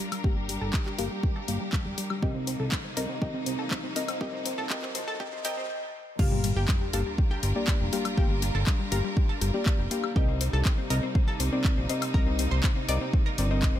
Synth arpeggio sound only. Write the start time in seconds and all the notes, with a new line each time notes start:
0.12 G3
0.24 G4
0.37 G3
0.49 G3
0.61 A4
0.74 G3
0.86 G3
0.98 A#4
1.11 G3
1.23 G3
1.36 A4
1.48 G3
1.61 G3
1.85 G3
1.98 G3
2.10 G3
2.23 G4
2.35 C4
2.47 C4
2.60 A4
2.72 C4
2.84 C4
2.97 A#4
3.09 C4
3.21 G4
3.34 C4
3.46 C4
3.59 A4
3.71 C4
3.84 C4
3.96 A#4
4.09 C4
4.21 G4
4.33 C4
4.46 C4
4.58 A4
4.70 G4
4.83 C4
4.95 C4
5.08 A4
5.20 G4
5.33 C4
5.45 G4
5.57 C4
6.19 F4
6.32 G3
6.44 G3
6.57 G4
6.69 G3
6.81 G3
6.94 A4
7.06 G3
7.18 G3
7.31 G4
7.43 G3
7.56 G3
7.81 G3
7.93 G3
8.05 G3
8.18 G4
8.30 G3
8.42 G3
8.55 A4
8.67 G3
8.80 G3
8.92 A#4
9.04 G3
9.17 G3
9.29 A4
9.41 G3
9.54 G3
9.79 G3
9.91 G3
10.04 G3
10.16 G4
10.29 C4
10.41 C4
10.53 A4
10.66 C4
10.78 C4
10.90 A#4
11.03 C4
11.15 C4
11.28 A4
11.40 C4
11.52 C4
11.77 C4
11.89 C4
12.02 C4
12.14 A#4
12.27 C4
12.39 C4
12.51 C5
12.64 C4
12.76 C4
12.89 D5
13.01 C4
13.13 C4
13.26 A#4
13.38 C4
13.51 C4
13.75 C4